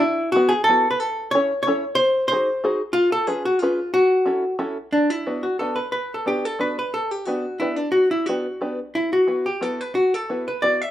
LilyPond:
<<
  \new Staff \with { instrumentName = "Hollow-body jazz guitar" } { \time 3/4 \key fis \minor \tempo 4 = 180 e'4 fis'8 gis'8 a'8. b'16 | a'4 cis''4 cis''4 | bis'4 bis'4. r8 | eis'8 a'8 gis'8 fis'8 eis'4 |
fis'2 r4 | \key b \minor d'8 e'4 fis'8 a'8 b'8 | \tuplet 3/2 { b'4 a'8 } g'8 a'8 b'8 b'8 | a'8 g'8 fis'4 e'8 d'8 |
fis'8 e'8 fis'4. r8 | e'8 fis'4 g'8 a'8 b'8 | fis'8 a'4 b'8 d''8 e''8 | }
  \new Staff \with { instrumentName = "Five-string banjo" } { \time 3/4 \key fis \minor r4 <b e' fis' b'>8 r8 <b e' fis' b'>8 r8 | r4 <cis' e' a' cis''>8 r8 <cis' e' a' cis''>8 r8 | r4 <dis' fis' gis' bis'>8 r8 <dis' fis' gis' bis'>8 r8 | r4 <cis' eis' gis' b'>8 r8 <cis' eis' gis' b'>8 r8 |
r4 <cis' e' fis' a'>8 r8 <cis' e' fis' a'>8 r8 | \key b \minor r4 <b d' fis' b'>8 r8 <b d' fis' b'>8 r8 | r4 <b d' fis' b'>8 r8 <b d' fis' b'>8 r8 | r4 <b d' g' b'>8 r8 <b d' g' b'>8 r8 |
r4 <b d' g' b'>8 r8 <b d' g' b'>8 r8 | r4 <b e' fis' b'>8 r8 <b e' fis' b'>8 r8 | r4 <b e' fis' b'>8 r8 <b e' fis' b'>8 r8 | }
>>